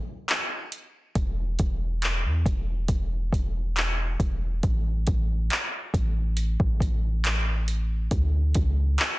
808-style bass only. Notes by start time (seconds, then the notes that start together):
1.16 E1
1.60 E1
2.25 E2
2.46 E1
2.89 E1
3.33 E1
4.20 E1
4.64 A1
5.08 A1
5.94 A1
6.60 A1
8.12 D2
8.56 C#2